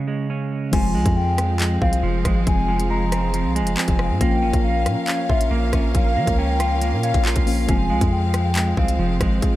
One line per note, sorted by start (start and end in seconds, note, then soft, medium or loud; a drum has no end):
0.00 0.73 C#3 medium
0.00 0.29 C#4 medium
0.08 0.73 G#3 medium
0.30 0.73 C#4 medium
0.71 0.96 F1 loud
0.71 4.16 F3 medium
0.71 9.56 F3 medium
0.71 2.02 F3 medium
0.71 4.17 G#3 medium
0.71 4.17 C4 medium
0.71 4.17 G#4 medium
0.71 9.56 F5 loud
0.71 1.14 G#5 loud
0.71 kick loud
0.71 closed hi-hat medium
0.71 crash loud
0.76 4.18 F4 medium
0.95 1.05 C2 loud
0.95 1.59 G#3 medium
1.06 1.79 F2 loud
1.06 kick loud
1.06 closed hi-hat medium
1.16 1.78 G5 medium
1.38 cross-stick loud
1.38 closed hi-hat medium
1.60 2.24 G#3 medium
1.60 clap loud
1.60 closed hi-hat medium
1.82 2.03 C2 loud
1.82 3.11 C4 medium
1.82 2.02 F5 medium
1.82 kick loud
1.93 closed hi-hat medium
2.03 2.24 F1 loud
2.03 2.67 F3 medium
2.25 2.46 G#1 loud
2.25 2.89 G#3 medium
2.25 kick loud
2.25 cross-stick loud
2.25 closed hi-hat medium
2.47 3.46 F1 loud
2.47 2.88 G#5 loud
2.47 kick loud
2.47 closed hi-hat medium
2.68 3.33 F3 medium
2.80 closed hi-hat medium
2.90 3.54 G#3 medium
2.90 3.52 A#5 medium
3.12 3.76 C4 medium
3.12 cross-stick medium
3.12 closed hi-hat medium
3.34 4.21 F3 medium
3.34 closed hi-hat medium
3.45 3.62 C2 loud
3.56 4.20 G#3 medium
3.56 4.17 G#5 medium
3.56 closed hi-hat medium
3.61 3.76 F1 loud
3.67 closed hi-hat medium
3.77 4.21 C4 medium
3.77 clap loud
3.88 4.11 F1 loud
3.88 kick medium
3.88 closed hi-hat medium
3.99 cross-stick loud
4.10 4.20 G#2 loud
4.19 4.44 A#1 loud
4.19 7.42 F3 medium
4.19 7.43 A#3 medium
4.19 5.50 A#3 loud
4.19 7.65 C#4 medium
4.19 7.43 C#4 medium
4.19 7.65 A#4 medium
4.19 4.62 G5 loud
4.19 kick loud
4.19 closed hi-hat medium
4.23 7.44 F4 medium
4.42 4.53 G#1 loud
4.42 5.07 C#4 medium
4.53 4.87 A#1 loud
4.53 kick loud
4.53 closed hi-hat medium
4.64 5.26 F5 medium
4.86 4.96 A#2 loud
4.86 cross-stick medium
4.86 closed hi-hat medium
5.08 5.72 C#4 medium
5.08 clap loud
5.08 closed hi-hat medium
5.29 5.50 A#1 loud
5.29 6.59 F4 medium
5.29 5.50 E5 medium
5.29 kick loud
5.41 closed hi-hat medium
5.51 5.72 A#1 loud
5.51 6.15 A#3 loud
5.73 5.94 A#1 loud
5.73 6.37 C#4 medium
5.73 kick loud
5.73 cross-stick loud
5.73 closed hi-hat medium
5.95 6.18 A#1 loud
5.95 6.36 F5 loud
5.95 kick loud
5.95 closed hi-hat medium
6.16 6.27 F3 loud
6.16 6.80 A#3 loud
6.27 6.94 C#2 loud
6.27 kick loud
6.27 closed hi-hat medium
6.38 7.02 C#4 medium
6.38 7.00 G5 loud
6.60 7.24 F4 medium
6.60 cross-stick medium
6.60 closed hi-hat medium
6.82 7.69 A#3 medium
6.82 closed hi-hat medium
6.93 7.13 A#2 loud
7.03 7.69 C#4 medium
7.03 7.24 F5 medium
7.03 closed hi-hat medium
7.14 7.35 A#1 loud
7.14 kick loud
7.14 closed hi-hat medium
7.25 7.69 F4 medium
7.25 clap loud
7.36 7.67 A#1 loud
7.36 kick medium
7.36 closed hi-hat medium
7.46 7.65 F3 medium
7.46 7.68 A#3 medium
7.46 7.69 C#4 medium
7.46 7.69 F4 medium
7.46 open hi-hat medium
7.66 7.92 F1 loud
7.66 9.56 F3 medium
7.66 8.98 F3 medium
7.66 9.56 G#3 medium
7.66 9.56 C4 medium
7.66 9.56 G#4 medium
7.66 8.10 G#5 loud
7.66 kick loud
7.66 closed hi-hat medium
7.71 9.56 F4 medium
7.90 8.01 C2 loud
7.90 8.55 G#3 medium
8.01 8.74 F2 loud
8.01 kick loud
8.01 closed hi-hat medium
8.12 8.74 G5 medium
8.34 cross-stick loud
8.34 closed hi-hat medium
8.55 9.19 G#3 medium
8.55 clap loud
8.55 closed hi-hat medium
8.77 8.98 C2 loud
8.77 9.56 C4 medium
8.77 8.98 F5 loud
8.77 kick loud
8.88 closed hi-hat medium
8.99 9.20 F1 loud
8.99 9.56 F3 medium
9.21 9.42 G#1 loud
9.21 9.56 G#3 medium
9.21 kick loud
9.21 cross-stick loud
9.21 closed hi-hat medium
9.42 kick loud
9.42 closed hi-hat medium